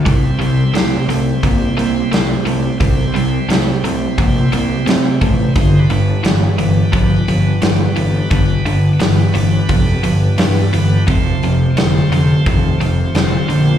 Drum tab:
HH |oooooooo|oooooooo|oooooooo|oooooooo|
SD |--o---o-|--o---o-|--o---o-|--o---o-|
BD |o---o---|o---o--o|o---o---|o---o---|

HH |oooooooo|
SD |--o---o-|
BD |o---o---|